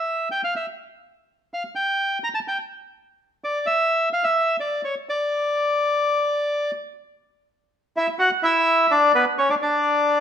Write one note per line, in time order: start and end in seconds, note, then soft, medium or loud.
0.00 0.29 E5 medium
0.31 0.42 G5 medium
0.44 0.54 F5 medium
0.56 0.66 E5 medium
1.54 1.63 F5 medium
1.75 2.18 G5 medium
2.24 2.28 A#5 medium
2.34 2.39 A5 medium
2.48 2.58 G5 medium
3.44 3.66 D5 medium
3.66 4.09 E5 medium
4.13 4.24 F5 medium
4.24 4.57 E5 medium
4.60 4.82 D5 medium
4.84 4.95 C#5 medium
5.09 6.71 D5 medium
7.97 8.07 E4 medium
7.97 8.08 E5 medium
8.19 8.29 F#4 medium
8.19 8.31 F#5 medium
8.43 8.86 E4 medium
8.43 8.92 E5 medium
8.91 9.12 D4 medium
8.91 9.13 D5 medium
9.15 9.25 B3 medium
9.15 9.25 B4 medium
9.38 9.49 C#4 medium
9.38 9.50 C#5 medium
9.50 9.55 D4 medium
9.50 9.55 D5 medium
9.62 10.20 D4 medium
9.62 10.20 D5 medium